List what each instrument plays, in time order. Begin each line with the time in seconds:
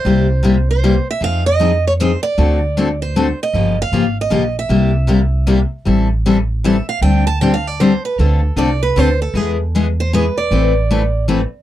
Already playing: steel-string acoustic guitar C5
0.05 upright bass C2, steel-string acoustic guitar C3 G3 A#3 E4 G4
0.43 steel-string acoustic guitar C3 G3 A#3 E4 G4
0.71 steel-string acoustic guitar C5
0.84 steel-string acoustic guitar C3 G3 A#3 E4 G4
1.11 steel-string acoustic guitar E5
1.21 upright bass F2, steel-string acoustic guitar F3 C4 D#4 G#4 F5
1.46 steel-string acoustic guitar D#5
1.60 steel-string acoustic guitar F3 C4 D#4 G#4
1.87 steel-string acoustic guitar C#5
2.00 steel-string acoustic guitar F3 C4 D#4 G#4 C5
2.23 steel-string acoustic guitar D5
2.38 upright bass D2, steel-string acoustic guitar D3 A3 C4 F#4 A4
2.77 steel-string acoustic guitar D3 A3 C4 F#4 A4
3.02 steel-string acoustic guitar C5
3.16 steel-string acoustic guitar D3 A3 C4 F#4 A4
3.43 steel-string acoustic guitar D#5
3.54 upright bass G1, steel-string acoustic guitar C#3 F3 A#3 F4 G4
3.82 steel-string acoustic guitar F5
3.92 upright bass G#1, steel-string acoustic guitar C#3 F3 A#3 F4 G4
4.21 steel-string acoustic guitar D#5
4.30 upright bass A#1, steel-string acoustic guitar C#3 F3 A#3 F4 G4
4.59 steel-string acoustic guitar E5
4.69 upright bass C2, steel-string acoustic guitar C3 G3 A#3 E4 G4
5.07 steel-string acoustic guitar C3 G3 A#3 E4 G4
5.47 steel-string acoustic guitar C3 G3 A#3 E4 G4
5.85 upright bass A1, steel-string acoustic guitar E3 G3 C4 E4 A4
6.26 steel-string acoustic guitar E3 G3 C4 E4 A4
6.64 steel-string acoustic guitar E3 G3 C4 E4 A4 E5
6.89 steel-string acoustic guitar F5
7.01 upright bass D2, steel-string acoustic guitar D3 G3 C4 D4 G4 G5
7.27 steel-string acoustic guitar A5
7.41 steel-string acoustic guitar D3 G3 C4 D4 G4 G5
7.54 steel-string acoustic guitar F5
7.67 steel-string acoustic guitar D5
7.80 steel-string acoustic guitar D3 G3 C4 D4 G4 C5
8.05 steel-string acoustic guitar B4
8.19 upright bass D2, steel-string acoustic guitar D3 A3 C4 F4 A4
8.56 upright bass C2, steel-string acoustic guitar D3 A3 C4 F4 A4 D5
8.83 steel-string acoustic guitar B4
8.96 upright bass D2, steel-string acoustic guitar D3 A3 C4 F4 A4 C5
9.22 steel-string acoustic guitar A4
9.34 upright bass E2, steel-string acoustic guitar E3 G#3 B3 E4 G#4
9.75 steel-string acoustic guitar E3 G#3 B3 E4 G#4
10.00 steel-string acoustic guitar C5
10.13 steel-string acoustic guitar E3 G#3 B3 E4 G#4 B4
10.38 steel-string acoustic guitar D5
10.51 upright bass A1, steel-string acoustic guitar E3 A3 C4 E4 B4
10.91 steel-string acoustic guitar E3 A3 C4 E4 B4
11.28 steel-string acoustic guitar E3 A3 C4 E4 B4